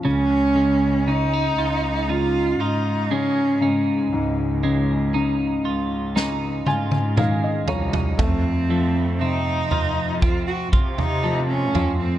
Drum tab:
SD |----------------|--------o-------|----------------|
T1 |----------------|----------oo----|----------------|
T2 |----------------|------------o---|----------------|
FT |----------------|--------------oo|o-----o-o--o--o-|
BD |----------------|----------------|o-------o-o-----|